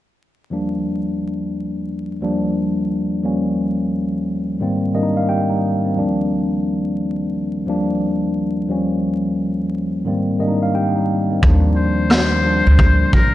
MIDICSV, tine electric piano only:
0, 0, Header, 1, 2, 480
1, 0, Start_track
1, 0, Key_signature, -3, "major"
1, 0, Tempo, 681818
1, 365, Time_signature, 4, 2, 24, 8
1, 9395, End_track
2, 0, Start_track
2, 0, Title_t, "Tine electric piano"
2, 0, Program_c, 0, 4
2, 354, Note_on_c, 0, 39, 86
2, 360, Note_on_c, 0, 53, 69
2, 365, Note_on_c, 0, 55, 72
2, 370, Note_on_c, 0, 58, 74
2, 374, Note_on_c, 0, 62, 81
2, 482, Control_c, 0, 64, 127
2, 1165, Note_off_c, 0, 39, 0
2, 1168, Note_off_c, 0, 53, 0
2, 1170, Note_off_c, 0, 55, 0
2, 1173, Note_off_c, 0, 58, 0
2, 1175, Note_off_c, 0, 62, 0
2, 1555, Note_on_c, 0, 39, 82
2, 1561, Note_on_c, 0, 53, 79
2, 1566, Note_on_c, 0, 55, 84
2, 1571, Note_on_c, 0, 58, 77
2, 1576, Note_on_c, 0, 62, 84
2, 2179, Note_off_c, 0, 39, 0
2, 2182, Note_off_c, 0, 53, 0
2, 2185, Note_off_c, 0, 55, 0
2, 2187, Note_off_c, 0, 58, 0
2, 2190, Note_off_c, 0, 62, 0
2, 2271, Note_on_c, 0, 39, 82
2, 2276, Note_on_c, 0, 53, 68
2, 2282, Note_on_c, 0, 55, 74
2, 2287, Note_on_c, 0, 58, 74
2, 2292, Control_c, 0, 64, 0
2, 2292, Note_on_c, 0, 61, 90
2, 2432, Control_c, 0, 64, 127
2, 3083, Note_off_c, 0, 39, 0
2, 3086, Note_off_c, 0, 53, 0
2, 3089, Note_off_c, 0, 55, 0
2, 3091, Note_off_c, 0, 58, 0
2, 3094, Note_off_c, 0, 61, 0
2, 3235, Note_on_c, 0, 44, 82
2, 3239, Note_on_c, 0, 51, 85
2, 3244, Note_on_c, 0, 55, 77
2, 3250, Note_on_c, 0, 58, 78
2, 3254, Control_c, 0, 64, 0
2, 3255, Note_on_c, 0, 60, 94
2, 3357, Control_c, 0, 64, 127
2, 3448, Note_off_c, 0, 44, 0
2, 3450, Note_off_c, 0, 51, 0
2, 3453, Note_off_c, 0, 55, 0
2, 3455, Note_off_c, 0, 58, 0
2, 3458, Note_off_c, 0, 60, 0
2, 3472, Note_on_c, 0, 44, 72
2, 3478, Note_on_c, 0, 51, 85
2, 3483, Note_on_c, 0, 55, 78
2, 3483, Note_on_c, 0, 75, 69
2, 3488, Note_on_c, 0, 58, 76
2, 3493, Note_on_c, 0, 62, 75
2, 3539, Note_on_c, 0, 63, 93
2, 3547, Note_off_c, 0, 62, 0
2, 3624, Note_off_c, 0, 75, 0
2, 3639, Note_on_c, 0, 77, 67
2, 3719, Note_off_c, 0, 58, 0
2, 3720, Note_off_c, 0, 77, 0
2, 3721, Note_off_c, 0, 51, 0
2, 3723, Note_on_c, 0, 67, 60
2, 3724, Note_off_c, 0, 55, 0
2, 3724, Note_on_c, 0, 79, 70
2, 3727, Note_on_c, 0, 58, 55
2, 3752, Note_off_c, 0, 63, 0
2, 3867, Note_off_c, 0, 67, 0
2, 3869, Note_on_c, 0, 63, 73
2, 3870, Note_off_c, 0, 58, 0
2, 3873, Note_on_c, 0, 55, 61
2, 4098, Note_off_c, 0, 44, 0
2, 4100, Note_off_c, 0, 63, 0
2, 4103, Note_off_c, 0, 55, 0
2, 4118, Note_on_c, 0, 60, 65
2, 4123, Note_on_c, 0, 51, 57
2, 4176, Note_off_c, 0, 79, 0
2, 4193, Note_on_c, 0, 39, 86
2, 4198, Note_on_c, 0, 53, 72
2, 4203, Note_on_c, 0, 55, 73
2, 4208, Note_on_c, 0, 58, 76
2, 4214, Control_c, 0, 64, 0
2, 4214, Note_on_c, 0, 62, 87
2, 4329, Control_c, 0, 64, 127
2, 4345, Note_off_c, 0, 60, 0
2, 4348, Note_off_c, 0, 51, 0
2, 5004, Note_off_c, 0, 39, 0
2, 5007, Note_off_c, 0, 53, 0
2, 5009, Note_off_c, 0, 55, 0
2, 5012, Note_off_c, 0, 58, 0
2, 5015, Note_off_c, 0, 62, 0
2, 5396, Note_on_c, 0, 39, 80
2, 5400, Note_on_c, 0, 53, 80
2, 5406, Note_on_c, 0, 55, 83
2, 5411, Note_on_c, 0, 58, 78
2, 5417, Note_on_c, 0, 62, 85
2, 6020, Note_off_c, 0, 39, 0
2, 6022, Note_off_c, 0, 53, 0
2, 6025, Note_off_c, 0, 55, 0
2, 6027, Note_off_c, 0, 58, 0
2, 6031, Note_off_c, 0, 62, 0
2, 6113, Note_on_c, 0, 39, 84
2, 6118, Note_on_c, 0, 53, 71
2, 6124, Note_on_c, 0, 55, 74
2, 6128, Note_on_c, 0, 58, 73
2, 6132, Control_c, 0, 64, 0
2, 6135, Note_on_c, 0, 61, 87
2, 6278, Control_c, 0, 64, 127
2, 6924, Note_off_c, 0, 39, 0
2, 6927, Note_off_c, 0, 53, 0
2, 6930, Note_off_c, 0, 55, 0
2, 6932, Note_off_c, 0, 58, 0
2, 6935, Note_off_c, 0, 61, 0
2, 7073, Note_on_c, 0, 44, 83
2, 7079, Note_on_c, 0, 51, 87
2, 7084, Note_on_c, 0, 55, 72
2, 7089, Note_on_c, 0, 58, 75
2, 7093, Control_c, 0, 64, 0
2, 7094, Note_on_c, 0, 60, 93
2, 7201, Control_c, 0, 64, 127
2, 7287, Note_off_c, 0, 44, 0
2, 7290, Note_off_c, 0, 51, 0
2, 7292, Note_off_c, 0, 55, 0
2, 7295, Note_off_c, 0, 58, 0
2, 7297, Note_off_c, 0, 60, 0
2, 7312, Note_on_c, 0, 44, 76
2, 7317, Note_on_c, 0, 51, 82
2, 7322, Note_on_c, 0, 55, 76
2, 7322, Note_on_c, 0, 75, 65
2, 7328, Note_on_c, 0, 58, 76
2, 7333, Note_on_c, 0, 62, 70
2, 7378, Note_on_c, 0, 63, 94
2, 7386, Note_off_c, 0, 62, 0
2, 7464, Note_off_c, 0, 75, 0
2, 7480, Note_on_c, 0, 77, 69
2, 7561, Note_off_c, 0, 51, 0
2, 7561, Note_off_c, 0, 77, 0
2, 7562, Note_off_c, 0, 58, 0
2, 7564, Note_off_c, 0, 55, 0
2, 7567, Note_on_c, 0, 67, 61
2, 7567, Note_on_c, 0, 79, 70
2, 7571, Note_on_c, 0, 58, 57
2, 7591, Note_off_c, 0, 63, 0
2, 7709, Note_off_c, 0, 67, 0
2, 7711, Note_off_c, 0, 58, 0
2, 7715, Note_on_c, 0, 63, 71
2, 7719, Note_on_c, 0, 55, 61
2, 7938, Note_off_c, 0, 44, 0
2, 7943, Note_off_c, 0, 63, 0
2, 7945, Note_off_c, 0, 55, 0
2, 7959, Note_on_c, 0, 60, 64
2, 7963, Note_on_c, 0, 51, 55
2, 8018, Note_off_c, 0, 79, 0
2, 8036, Note_on_c, 0, 53, 88
2, 8049, Note_on_c, 0, 58, 83
2, 8055, Control_c, 0, 64, 0
2, 8057, Note_on_c, 0, 62, 93
2, 8185, Note_off_c, 0, 60, 0
2, 8188, Note_off_c, 0, 51, 0
2, 8194, Control_c, 0, 64, 127
2, 8660, Note_off_c, 0, 53, 0
2, 8667, Note_off_c, 0, 58, 0
2, 8670, Note_off_c, 0, 62, 0
2, 8751, Note_on_c, 0, 53, 74
2, 8759, Note_on_c, 0, 55, 74
2, 8766, Note_on_c, 0, 58, 67
2, 8772, Note_on_c, 0, 62, 80
2, 9395, Note_off_c, 0, 53, 0
2, 9395, Note_off_c, 0, 55, 0
2, 9395, Note_off_c, 0, 58, 0
2, 9395, Note_off_c, 0, 62, 0
2, 9395, End_track
0, 0, End_of_file